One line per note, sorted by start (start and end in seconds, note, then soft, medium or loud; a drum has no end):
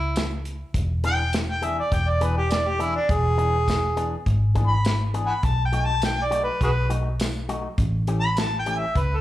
0.00 0.62 C#2 medium
0.00 0.42 E4 loud
0.16 snare loud
0.16 closed hi-hat medium
0.16 tambourine loud
0.45 closed hi-hat medium
0.74 1.79 E1 loud
0.74 kick loud
0.74 closed hi-hat medium
1.04 1.22 E3 medium
1.04 1.22 B3 medium
1.04 1.22 D4 medium
1.04 1.22 G#4 medium
1.04 1.34 G5 loud
1.04 closed hi-hat medium
1.33 snare loud
1.33 closed hi-hat medium
1.33 tambourine medium
1.51 1.65 G5 medium
1.62 1.81 E3 medium
1.62 1.81 B3 medium
1.62 1.80 D4 medium
1.62 1.80 G#4 medium
1.62 1.77 E5 medium
1.62 closed hi-hat medium
1.79 1.95 D5 medium
1.92 2.97 E1 loud
1.92 2.11 G5 medium
1.92 kick medium
1.92 closed hi-hat medium
2.09 2.24 D5 medium
2.21 2.40 E3 medium
2.21 2.39 B3 medium
2.21 2.39 D4 medium
2.21 2.39 G#4 medium
2.21 2.36 B4 medium
2.21 closed hi-hat medium
2.37 2.54 G4 medium
2.51 2.70 D5 medium
2.51 snare loud
2.51 closed hi-hat medium
2.51 tambourine loud
2.68 2.83 G4 medium
2.79 2.98 E3 medium
2.79 2.98 B3 medium
2.79 2.98 D4 medium
2.79 2.95 E4 medium
2.79 2.97 G#4 medium
2.79 closed hi-hat medium
2.96 3.12 D4 medium
3.09 4.14 E1 loud
3.09 4.24 G#4 loud
3.09 kick loud
3.09 closed hi-hat medium
3.38 3.57 E3 medium
3.38 3.56 B3 medium
3.38 3.56 D4 medium
3.38 3.56 G#4 medium
3.38 closed hi-hat medium
3.68 kick medium
3.68 snare loud
3.68 closed hi-hat medium
3.68 tambourine loud
3.97 4.15 E3 medium
3.97 4.15 B3 medium
3.97 4.15 D4 medium
3.97 4.15 G#4 medium
3.97 closed hi-hat medium
4.26 5.31 G#1 loud
4.26 kick medium
4.26 closed hi-hat medium
4.55 4.74 E3 medium
4.55 4.74 B3 medium
4.55 4.74 D4 medium
4.55 4.73 G#4 medium
4.55 kick medium
4.55 closed hi-hat medium
4.67 5.04 B5 loud
4.85 snare loud
4.85 closed hi-hat medium
4.85 tambourine loud
5.14 5.33 E3 soft
5.14 5.32 B3 medium
5.14 5.32 D4 medium
5.14 5.32 G#4 medium
5.14 closed hi-hat medium
5.26 5.33 F#5 medium
5.26 5.34 G#5 medium
5.26 5.46 B5 medium
5.43 6.49 B1 medium
5.43 5.63 A5 medium
5.43 kick loud
5.43 closed hi-hat medium
5.65 5.86 G5 medium
5.72 5.91 F#3 medium
5.72 5.91 A3 medium
5.72 5.91 D#4 medium
5.72 5.91 F#4 medium
5.72 closed hi-hat medium
5.85 6.03 A5 loud
6.02 6.26 G5 loud
6.02 snare medium
6.02 closed hi-hat medium
6.02 tambourine loud
6.25 6.42 D5 medium
6.31 6.50 F#3 soft
6.31 6.50 A3 medium
6.31 6.49 D#4 medium
6.31 6.49 F#4 medium
6.31 closed hi-hat medium
6.44 6.62 B4 medium
6.61 7.66 B1 medium
6.61 6.71 F#4 medium
6.61 6.70 G#4 medium
6.61 6.90 B4 loud
6.61 kick medium
6.61 closed hi-hat medium
6.89 7.08 F#3 soft
6.89 7.08 A3 medium
6.89 7.08 D#4 medium
6.89 7.08 F#4 medium
6.89 closed hi-hat medium
7.20 snare medium
7.20 closed hi-hat medium
7.20 tambourine loud
7.49 7.67 F#3 medium
7.49 7.67 A3 medium
7.49 7.67 D#4 medium
7.49 7.67 F#4 medium
7.49 closed hi-hat medium
7.78 8.83 A1 loud
7.78 kick loud
7.78 closed hi-hat medium
8.07 8.26 E3 medium
8.07 8.26 A3 medium
8.07 8.26 C#4 medium
8.07 8.26 G4 medium
8.07 closed hi-hat medium
8.20 8.40 B5 loud
8.37 8.57 A5 loud
8.37 snare loud
8.37 closed hi-hat medium
8.37 tambourine medium
8.59 8.80 G5 medium
8.66 8.85 E3 medium
8.66 8.85 A3 medium
8.66 8.84 C#4 medium
8.66 8.84 G4 medium
8.66 closed hi-hat medium
8.78 9.00 E5 medium
8.95 9.21 C#2 medium
8.95 9.18 B4 medium
8.95 kick medium
8.95 closed hi-hat medium
9.17 9.21 A4 medium